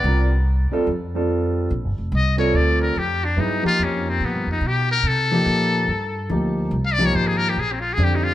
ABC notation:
X:1
M:4/4
L:1/16
Q:"Swing" 1/4=143
K:Bb
V:1 name="Muted trumpet"
d2 z12 z2 | z4 e2 _d2 =d2 B2 G2 D2 | ^D2 F2 _D2 C2 =B,2 ^D2 G2 ^A2 | A12 z4 |
z f d _d c _A B G A C F A G E F z |]
V:2 name="Grand piano"
[G,CFB]2 z4 [G,CFA]2 z2 [G,CFA]6 | z6 [G,CFA]6 z4 | [_G,=B,=E_A]2 [F,^A,^D=G]8 z6 | z2 [F,B,EG]6 z4 [F,B,EG]4 |
z2 [F,B,EG]6 z4 [D,G,CG]4 |]
V:3 name="Upright bass" clef=bass
C,,6 z2 F,,8 | (3B,,,2 G,,,2 F,,,2 C,,4 D,,4 F,,4 | G,,2 z2 F,,4 (3^A,,2 G,,2 F,,2 =B,,4 | C,4 B,,4 G,,4 D,,4 |
C,,4 _A,,,4 B,,,4 F,,4 |]